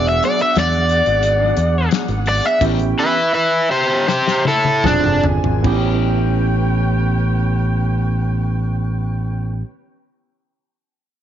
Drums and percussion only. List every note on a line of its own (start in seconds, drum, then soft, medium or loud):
0.06 closed hi-hat soft
0.23 closed hi-hat medium
0.39 closed hi-hat soft
0.56 snare loud
0.56 closed hi-hat medium
0.72 closed hi-hat soft
0.89 closed hi-hat medium
1.06 closed hi-hat soft
1.23 closed hi-hat medium
1.57 closed hi-hat medium
1.91 snare loud
1.91 closed hi-hat medium
2.08 closed hi-hat soft
2.26 open hi-hat medium
2.44 closed hi-hat soft
2.61 kick loud
2.61 closed hi-hat medium
2.61 crash medium
2.79 closed hi-hat soft
4.08 snare medium
4.28 snare medium
4.45 high tom medium
4.65 high tom medium
4.84 kick medium
4.84 snare medium
4.84 mid tom medium
5.04 mid tom medium
5.24 floor tom medium
5.44 floor tom medium
5.64 kick loud
5.64 crash medium